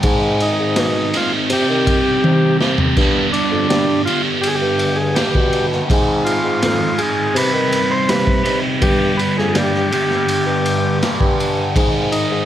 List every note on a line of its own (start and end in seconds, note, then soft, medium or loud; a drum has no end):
0.03 0.51 G#2 loud
0.03 1.12 G#2 loud
0.03 1.12 D#3 medium
0.03 1.13 G#3 medium
0.03 1.13 C4 loud
0.03 kick loud
0.03 ride loud
0.07 1.13 D#4 loud
0.07 1.12 G#4 loud
0.40 1.17 D#4 medium
0.40 ride medium
0.59 0.75 G#2 medium
0.76 1.09 B2 medium
0.76 snare loud
0.76 ride loud
1.14 1.50 G#2 medium
1.14 1.50 D#3 medium
1.14 1.49 G#3 medium
1.14 1.49 C4 medium
1.14 1.49 D#4 medium
1.14 1.32 F4 medium
1.14 1.48 G#4 medium
1.14 snare soft
1.14 ride medium
1.50 1.66 C3 medium
1.50 2.58 C3 medium
1.50 2.59 G3 medium
1.50 2.59 C4 medium
1.50 2.60 D#4 medium
1.50 2.57 G4 loud
1.50 ride loud
1.54 2.59 G4 medium
1.69 2.00 D#3 medium
1.87 kick medium
1.87 ride medium
2.24 2.55 C3 medium
2.24 high tom medium
2.61 2.77 C3 medium
2.61 2.96 C3 medium
2.61 2.96 G3 medium
2.61 2.96 C4 medium
2.61 2.95 D#4 medium
2.61 2.95 G4 medium
2.61 snare medium
2.78 floor tom loud
2.96 3.28 G2 loud
2.96 4.05 G2 medium
2.96 4.05 D3 loud
2.96 4.05 G3 loud
2.96 4.06 B3 loud
2.96 kick loud
2.96 crash medium
3.01 4.06 D4 loud
3.01 4.06 G4 loud
3.33 4.02 D4 medium
3.33 ride medium
3.51 3.67 F2 medium
3.69 4.01 G3 loud
3.69 snare loud
3.69 ride loud
4.05 5.16 B3 medium
4.05 5.15 D4 medium
4.05 4.22 F4 medium
4.05 5.15 G4 medium
4.05 ride medium
4.10 5.14 G2 medium
4.10 5.16 D3 medium
4.10 5.16 G3 medium
4.41 4.49 G4 loud
4.41 ride medium
4.47 4.56 G#4 medium
4.55 4.98 G4 loud
4.62 5.24 G2 medium
4.79 ride medium
4.95 5.16 G#4 medium
5.15 5.87 G2 medium
5.15 5.88 D3 medium
5.15 5.88 G3 medium
5.15 5.88 B3 medium
5.15 5.89 D4 medium
5.15 5.67 G4 loud
5.15 snare loud
5.15 ride loud
5.19 5.89 G4 medium
5.35 5.82 B2 medium
5.35 kick medium
5.53 ride medium
5.72 snare soft
5.88 6.97 G#2 medium
5.88 6.37 G#2 loud
5.88 6.97 D#3 loud
5.88 6.98 G#3 loud
5.88 6.98 C4 loud
5.88 6.98 D#4 loud
5.88 kick loud
5.88 ride medium
5.93 6.97 G#4 loud
6.25 7.01 F4 medium
6.25 ride medium
6.44 6.60 G#2 medium
6.62 6.94 F2 medium
6.62 snare loud
6.62 ride loud
6.98 7.34 D#3 medium
6.98 7.35 G#3 medium
6.98 7.34 C4 medium
6.98 7.34 D#4 medium
6.98 7.37 G#4 medium
6.98 7.33 G#4 medium
6.98 ride medium
7.03 7.35 G#2 medium
7.34 8.43 C3 medium
7.34 7.51 C3 loud
7.34 8.43 G3 medium
7.34 8.44 C4 medium
7.34 8.44 D#4 medium
7.34 8.43 G4 loud
7.34 7.93 B4 loud
7.34 ride loud
7.53 7.85 D#3 loud
7.72 ride medium
7.91 8.10 C5 loud
8.09 8.40 C3 medium
8.09 8.60 B4 loud
8.09 snare loud
8.09 ride loud
8.27 kick medium
8.44 8.61 C3 medium
8.44 8.81 G3 medium
8.44 8.80 C4 medium
8.44 8.80 D#4 medium
8.44 8.79 G4 loud
8.44 ride medium
8.48 8.81 C3 medium
8.81 9.89 G2 medium
8.81 9.13 G2 loud
8.81 9.89 D3 medium
8.81 9.90 G3 loud
8.81 9.90 B3 loud
8.81 9.90 D4 loud
8.81 9.20 G4 loud
8.81 9.90 G4 loud
8.81 kick loud
8.81 ride loud
9.17 9.37 B4 medium
9.17 ride medium
9.37 9.53 F2 medium
9.37 9.56 G#4 medium
9.37 snare soft
9.55 9.87 G3 loud
9.55 9.92 G4 medium
9.55 snare loud
9.55 ride loud
9.74 snare soft
9.91 11.00 G2 medium
9.91 11.01 D3 medium
9.91 11.00 G3 medium
9.91 11.00 B3 medium
9.91 11.00 D4 medium
9.91 10.99 G4 loud
9.91 10.99 G4 medium
9.91 ride medium
10.10 snare soft
10.29 ride medium
10.46 11.09 G2 medium
10.66 ride medium
11.01 11.73 G2 medium
11.01 11.73 D3 medium
11.01 11.73 G3 medium
11.01 11.74 B3 medium
11.01 11.74 D4 loud
11.01 11.75 G4 medium
11.01 snare loud
11.01 ride medium
11.20 11.67 G2 medium
11.20 kick medium
11.40 ride medium
11.76 12.45 G#2 loud
11.76 12.22 G#2 loud
11.76 12.45 D#3 loud
11.76 12.45 G#3 loud
11.76 12.45 C4 medium
11.76 12.45 D#4 loud
11.76 12.45 G#4 loud
11.76 kick loud
11.76 ride loud
12.12 12.45 D#4 medium
12.12 ride medium
12.31 12.45 G#2 medium